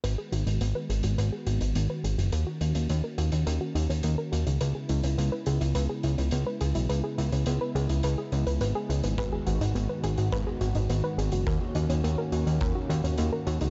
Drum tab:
HH |x-xxx-xxx-xxx-xx|x-xxx-xxx-xxx-xx|x-xxx-xxx-xxx-xx|x-xxx-xxx-xxx-xx|
BD |----------------|----------------|----------------|----------------|

HH |x-xxx-xxx-xxx-xx|x-xxx-xxx-xxx-xx|
BD |o-------o-------|o-------o-------|